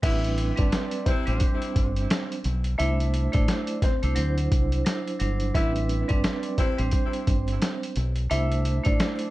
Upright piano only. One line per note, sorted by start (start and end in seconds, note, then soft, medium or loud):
0.03 0.55 E4 medium
0.03 0.55 E5 loud
0.58 1.04 D4 medium
0.58 1.04 D5 medium
1.06 1.58 C4 medium
1.06 1.58 C5 medium
2.78 3.30 E4 medium
2.78 3.30 E5 loud
3.33 3.80 D4 medium
3.33 3.79 D5 medium
3.84 4.35 C4 medium
3.84 4.34 C5 medium
5.55 6.07 E4 medium
5.55 6.06 E5 loud
6.08 6.55 D4 medium
6.08 6.55 D5 medium
6.58 7.10 C4 medium
6.58 7.10 C5 medium
8.31 8.83 E4 medium
8.31 8.82 E5 loud
8.86 9.30 D4 medium
8.86 9.30 D5 medium